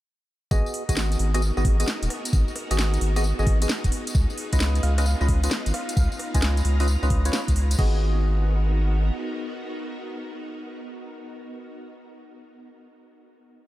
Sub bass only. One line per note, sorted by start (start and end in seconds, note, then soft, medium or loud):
0.51 0.63 G#1 medium
0.89 1.17 G#1 medium
1.19 1.52 G#1 medium
1.57 1.85 G#1 loud
2.02 2.08 D#1 loud
2.33 2.45 G#1 medium
2.71 2.98 G#1 medium
3.01 3.33 G#1 medium
3.39 3.67 G#1 loud
3.84 3.90 D#1 loud
4.15 4.26 C#2 loud
4.53 4.80 C#2 loud
4.83 5.15 C#2 medium
5.21 5.48 C#2 loud
5.66 5.72 G#1 loud
5.97 6.08 C#2 loud
6.35 6.62 C#2 medium
6.65 6.97 C#2 medium
7.03 7.30 C#2 medium
7.48 7.76 C#2 medium
7.79 9.11 G#1 loud